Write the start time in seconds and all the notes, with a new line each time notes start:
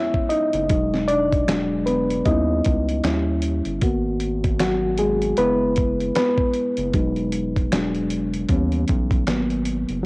Already playing: G#3 B3 C#4 E4 C#5 E5
0.14 kick
0.29 D#4 D#5, closed hi-hat
0.53 F#1, closed hi-hat
0.69 E1 F#3 G#3 D#4, kick, closed hi-hat
0.94 snare
1.08 D4 D5, closed hi-hat
1.32 kick, closed hi-hat
1.47 E1 F#3 G#3 D4, finger snap, snare, closed hi-hat
1.86 B3 B4, closed hi-hat
2.10 closed hi-hat
2.25 D#2 G3 B3 C#4 D#4 E4 D#5, kick, closed hi-hat
2.64 C#2, kick, closed hi-hat
2.89 closed hi-hat
3.04 D#2 G3 C#4 E4, finger snap, snare, closed hi-hat
3.42 closed hi-hat
3.65 G1, closed hi-hat
3.81 G#1 A#3 B3 F#4, kick, closed hi-hat
4.20 closed hi-hat
4.44 kick, closed hi-hat
4.59 F#3 F#4, finger snap, snare, closed hi-hat
4.98 G#3 G#4, closed hi-hat
5.22 closed hi-hat
5.37 F#1 G#3 B3 E4 B4, closed hi-hat
5.76 kick, closed hi-hat
6.00 closed hi-hat
6.15 B3 B4, finger snap, snare, closed hi-hat
6.38 kick
6.54 closed hi-hat
6.77 F#1, closed hi-hat
6.94 E1 F#3 G#3 D#4, kick, closed hi-hat
7.16 closed hi-hat
7.32 closed hi-hat
7.56 kick, closed hi-hat
7.72 E1 F#3 G#3 D4, finger snap, snare, closed hi-hat
7.95 closed hi-hat
8.10 closed hi-hat
8.34 closed hi-hat
8.49 D#2 E3 G3 B3 C#4, kick, closed hi-hat
8.72 closed hi-hat
8.88 B1, kick, closed hi-hat
9.11 kick, closed hi-hat
9.27 G#1 F#3 A#3 B3, finger snap, snare, closed hi-hat
9.50 closed hi-hat
9.65 closed hi-hat
9.89 F#1, closed hi-hat